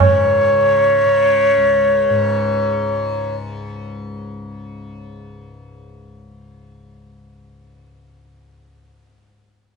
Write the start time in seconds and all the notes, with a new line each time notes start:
Already playing: C#2 C#3
0.00 G#2 C#5, tabla na, tabla ge
0.53 C#3
1.05 C#3
1.56 C#2
2.09 G#2